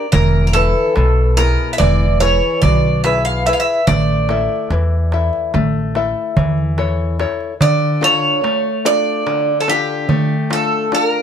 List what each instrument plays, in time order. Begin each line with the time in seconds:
0.12 upright bass E1, nylon-string guitar E3, bouzouki A#4, darbuka dum
0.34 darbuka tek
0.47 bouzouki A#4
0.53 nylon-string guitar E4 B4, bouzouki A4, darbuka tek
0.96 upright bass B1, nylon-string guitar B2, darbuka tek
1.37 nylon-string guitar B3 E4 G#4, bouzouki A#4, darbuka tek
1.73 bouzouki E5
1.78 upright bass E1, nylon-string guitar E3, bouzouki D5, darbuka tek, darbuka dum
2.20 nylon-string guitar E4 G#4 B4, bouzouki C#5, darbuka tek
2.62 upright bass B1, nylon-string guitar B2, bouzouki D5, darbuka dum
3.04 nylon-string guitar E4 G#4 B4, bouzouki E5, darbuka tek
3.25 bouzouki F5
3.46 nylon-string guitar E4 G#4 B4, bouzouki E5, darbuka tek
3.53 bouzouki F5
3.60 bouzouki E5
3.87 upright bass A1, nylon-string guitar A3, bouzouki D5, darbuka dum
4.29 nylon-string guitar E4 A4 E5, darbuka tek
4.70 upright bass E2, nylon-string guitar E3, darbuka tek
5.12 nylon-string guitar E4 A4 E5, darbuka tek
5.33 darbuka tek
5.54 upright bass A1, nylon-string guitar A3, darbuka tek, darbuka dum
5.95 nylon-string guitar E4 A4 E5, darbuka tek
6.37 upright bass E2, nylon-string guitar E3, darbuka dum
6.58 darbuka tek
6.78 nylon-string guitar E4 A4 C#5, darbuka tek
7.19 nylon-string guitar E4 A4 C#5, darbuka tek
7.40 darbuka tek
7.61 nylon-string guitar D3, bouzouki D5, darbuka dum
7.82 darbuka tek
8.01 nylon-string guitar D4 F4 A4, bouzouki C#5, darbuka tek
8.44 nylon-string guitar A3, darbuka tek
8.85 nylon-string guitar D4 F4 A4, bouzouki D5, darbuka tek
9.26 nylon-string guitar D3, darbuka tek
9.60 bouzouki A4
9.68 nylon-string guitar D4 F4 A4, bouzouki G4, darbuka tek
10.09 nylon-string guitar A3, darbuka dum
10.50 nylon-string guitar D4 F4, bouzouki A4, darbuka tek
10.92 nylon-string guitar D4 F4, bouzouki A4, darbuka tek
11.06 bouzouki A#4
11.13 darbuka tek